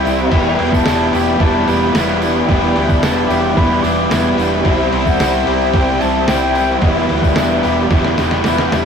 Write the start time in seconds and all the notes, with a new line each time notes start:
Already playing: C3 E3 G3 C4 E4 G4 C5 E5 B5
0.05 C2 G3 C4 E4, open hi-hat, tambourine
0.20 tambourine
0.31 E1 E3 G3 B3 E4 D5, kick, crash
0.35 G5
0.59 E1 G3 B3 E4, open hi-hat, tambourine
0.72 A5, kick, tambourine
0.84 E1 E3 G3 B3 D4 E4, snare, open hi-hat
0.88 tambourine
1.13 E1 E3 G3 B3 E4 G4 G5, open hi-hat, tambourine
1.29 tambourine
1.38 E1 E3 G3 B3 E4 A5, kick, open hi-hat, tambourine
1.65 E1 G3 B3 E4 B5, open hi-hat, tambourine
1.93 E1 E3 G3 B3 E4, snare, open hi-hat, tambourine
2.09 tambourine
2.22 G3 B3 D4 E4, open hi-hat, tambourine
2.48 E1 E3 G3 B3 E4 G5, kick, open hi-hat
2.75 D2 G3 B3 E4, open hi-hat, tambourine
2.88 A5, kick, tambourine
3.02 E1 E3 G3 B3 D4 E4, snare, open hi-hat, tambourine
3.28 E1 E3 G3 B3 E4 G4 G5, open hi-hat, tambourine
3.44 tambourine
3.55 E1 E3 G3 B3 E4 B5, kick, open hi-hat, tambourine
3.82 E1 G3 B3 E4 D6, open hi-hat, tambourine
4.11 E1 E3 G3 B3 E4, snare, open hi-hat, tambourine
4.26 tambourine
4.37 E1 G3 B3 D4 E4, open hi-hat, tambourine
4.65 C2 C3 E3 G3 C4 E4 G4 C5 E5, kick, open hi-hat
4.92 C2 G3 C4 E4, open hi-hat, tambourine
5.06 F#5, kick, tambourine
5.19 C2 C3 G3 C4 E4, snare, open hi-hat, tambourine
5.46 C2 C3 G3 C4 E4 G4 E5, open hi-hat
5.61 tambourine
5.73 C2 C3 G3 C4 E4 G5, kick, open hi-hat, tambourine
5.99 C2 E3 G3 C4 E4 A5, open hi-hat, tambourine
6.27 C2 C3 G3 C4 E4 G5, snare, open hi-hat, tambourine
6.42 tambourine
6.55 G3 C4 E4, open hi-hat, tambourine
6.81 E1 E3 G3 B3 E4 G4 D5 E5, kick, open hi-hat, tambourine
6.97 tambourine
7.09 D2 G3 B3 E4, open hi-hat, tambourine
7.23 kick, tambourine
7.36 E1 E3 G3 B3 D4 E4, snare, open hi-hat, tambourine
7.52 tambourine
7.63 E1 E3 G3 B3 E4 G4, open hi-hat, tambourine
7.78 tambourine
7.90 E1 E3 G3 B3 E4, kick, snare, open hi-hat, tambourine
8.05 snare
8.17 E1 G3 B3 E4, snare, open hi-hat, tambourine
8.31 snare, tambourine
8.44 E1 E3 G3 B3 E4, snare, open hi-hat, tambourine
8.58 snare, tambourine
8.72 E1 G3 B3 D4 E4, snare, open hi-hat, tambourine